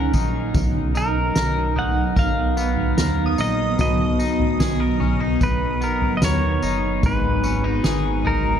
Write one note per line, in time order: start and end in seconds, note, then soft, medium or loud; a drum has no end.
0.00 0.12 C#2 medium
0.00 0.54 A#2 medium
0.00 0.51 F#3 medium
0.00 0.51 C#4 medium
0.00 0.63 C#4 medium
0.00 0.13 D#4 medium
0.00 6.99 D#4 medium
0.00 0.63 A#4 medium
0.00 0.11 F#5 medium
0.13 0.53 A#1 medium
0.13 0.94 D#4 medium
0.13 kick medium
0.13 tambourine medium
0.54 1.32 B1 loud
0.54 6.99 F#3 medium
0.54 6.99 B3 medium
0.54 kick loud
0.54 floor tom loud
0.54 tambourine medium
0.95 1.76 D#4 medium
0.95 1.80 A#4 medium
0.95 tambourine medium
1.35 2.13 B1 loud
1.35 2.15 A#4 medium
1.35 snare loud
1.35 tambourine medium
1.76 3.38 D#4 medium
1.76 2.19 F#5 loud
1.76 floor tom medium
2.16 2.94 B1 loud
2.16 2.96 A#4 medium
2.16 3.40 F5 loud
2.16 kick medium
2.16 floor tom medium
2.16 tambourine medium
2.57 5.81 B3 medium
2.57 tambourine medium
2.77 floor tom medium
2.98 3.36 D#2 medium
2.98 4.60 A#4 medium
2.98 snare loud
2.98 tambourine loud
3.26 6.43 D#6 medium
3.38 3.77 A#1 medium
3.38 4.19 D#4 medium
3.38 3.80 D#5 medium
3.38 tambourine medium
3.79 4.56 B1 loud
3.79 7.03 B2 medium
3.79 5.47 D#5 loud
3.79 floor tom loud
3.79 tambourine medium
4.19 5.00 D#4 medium
4.19 tambourine medium
4.40 floor tom medium
4.60 5.37 B1 loud
4.60 4.80 G#4 medium
4.60 snare loud
4.60 tambourine medium
4.80 5.41 A#4 medium
5.00 5.20 C#4 medium
5.00 floor tom medium
5.20 6.62 D#4 soft
5.41 6.18 B1 loud
5.41 5.84 B4 medium
5.41 kick medium
5.41 floor tom medium
5.41 tambourine medium
5.81 7.47 B3 medium
5.81 6.14 A#4 medium
5.81 tambourine medium
6.02 floor tom medium
6.17 6.23 D#5 medium
6.22 6.61 D#2 loud
6.22 7.11 A#4 medium
6.22 7.07 C#5 medium
6.22 snare loud
6.22 tambourine loud
6.62 7.01 F#1 medium
6.62 7.43 D#4 medium
6.62 tambourine medium
7.03 7.80 G#1 loud
7.03 8.60 G#2 medium
7.03 8.60 G#3 medium
7.03 8.60 B3 medium
7.03 8.60 D#4 medium
7.03 8.60 F#4 medium
7.03 8.30 B4 medium
7.03 8.60 A#5 medium
7.03 kick loud
7.03 floor tom loud
7.03 tambourine medium
7.44 7.64 C#4 medium
7.44 tambourine medium
7.64 8.23 D#4 medium
7.84 8.60 G#1 loud
7.84 8.60 G#4 medium
7.84 snare loud
7.84 tambourine medium
8.25 8.60 D#4 medium
8.25 8.60 A#4 medium
8.25 floor tom medium